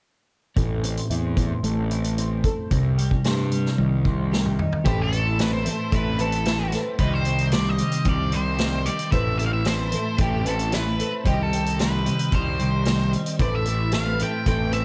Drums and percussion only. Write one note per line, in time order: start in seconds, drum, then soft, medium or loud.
0.56 kick medium
0.56 closed hi-hat soft
0.84 closed hi-hat medium
0.97 closed hi-hat medium
1.11 closed hi-hat medium
1.37 kick medium
1.37 closed hi-hat medium
1.64 closed hi-hat medium
1.91 closed hi-hat soft
2.04 closed hi-hat medium
2.18 closed hi-hat medium
2.44 kick medium
2.44 closed hi-hat medium
2.71 kick medium
2.71 closed hi-hat medium
2.98 closed hi-hat medium
3.11 kick medium
3.24 snare medium
3.24 closed hi-hat medium
3.52 closed hi-hat medium
3.66 snare soft
3.78 high tom medium
4.05 kick medium
4.33 snare medium
4.46 mid tom medium
4.59 floor tom medium
4.73 floor tom medium
4.86 kick loud
4.86 closed hi-hat medium
5.13 closed hi-hat medium
5.39 snare medium
5.39 closed hi-hat medium
5.66 closed hi-hat medium
5.92 kick loud
5.92 closed hi-hat medium
6.19 closed hi-hat medium
6.32 closed hi-hat medium
6.45 snare medium
6.45 closed hi-hat medium
6.72 snare soft
6.72 closed hi-hat medium
6.99 kick medium
6.99 closed hi-hat medium
7.25 closed hi-hat soft
7.38 closed hi-hat soft
7.52 snare loud
7.52 closed hi-hat medium
7.78 closed hi-hat medium
7.92 closed hi-hat medium
8.05 kick loud
8.05 closed hi-hat medium
8.32 closed hi-hat medium
8.58 snare loud
8.58 closed hi-hat medium
8.86 closed hi-hat medium
8.99 closed hi-hat medium
9.12 kick medium
9.12 closed hi-hat medium
9.39 closed hi-hat soft
9.65 snare loud
9.65 closed hi-hat medium
9.92 closed hi-hat medium
10.18 kick loud
10.18 closed hi-hat medium
10.46 closed hi-hat medium
10.59 closed hi-hat soft
10.72 snare loud
10.72 closed hi-hat medium
11.00 closed hi-hat medium
11.26 kick medium
11.26 closed hi-hat medium
11.53 closed hi-hat medium
11.66 closed hi-hat medium
11.79 snare medium
11.79 closed hi-hat medium
12.06 closed hi-hat medium
12.19 closed hi-hat medium
12.32 kick loud
12.32 closed hi-hat medium
12.60 closed hi-hat soft
12.85 snare loud
12.85 closed hi-hat medium
13.13 closed hi-hat medium
13.26 closed hi-hat medium
13.39 kick loud
13.39 closed hi-hat soft
13.66 closed hi-hat soft
13.92 snare medium
13.92 closed hi-hat medium
14.19 closed hi-hat medium
14.46 kick loud
14.46 closed hi-hat medium
14.72 closed hi-hat medium